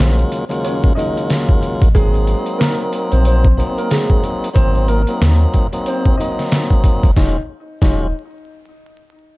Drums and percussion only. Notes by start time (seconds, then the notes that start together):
0.00 snare, closed hi-hat
0.19 closed hi-hat
0.32 closed hi-hat
0.51 closed hi-hat
0.64 closed hi-hat
0.84 kick
0.99 closed hi-hat
1.18 closed hi-hat
1.30 snare, closed hi-hat
1.49 kick
1.63 closed hi-hat
1.82 kick, closed hi-hat
1.95 kick, closed hi-hat
2.14 closed hi-hat
2.27 closed hi-hat
2.46 closed hi-hat
2.61 snare, closed hi-hat
2.80 closed hi-hat
2.93 closed hi-hat
3.12 closed hi-hat
3.25 closed hi-hat
3.45 kick
3.60 closed hi-hat
3.78 closed hi-hat
3.91 snare, closed hi-hat
4.10 kick
4.24 closed hi-hat
4.44 closed hi-hat
4.56 kick, closed hi-hat
4.75 closed hi-hat
4.88 closed hi-hat
5.07 closed hi-hat
5.22 snare, closed hi-hat
5.41 closed hi-hat
5.54 kick, closed hi-hat
5.73 closed hi-hat
5.86 closed hi-hat
6.05 kick
6.21 closed hi-hat
6.39 snare, closed hi-hat
6.52 snare, closed hi-hat
6.71 kick, closed hi-hat
6.84 kick, closed hi-hat
7.03 kick, closed hi-hat
7.17 kick, snare
7.82 kick, snare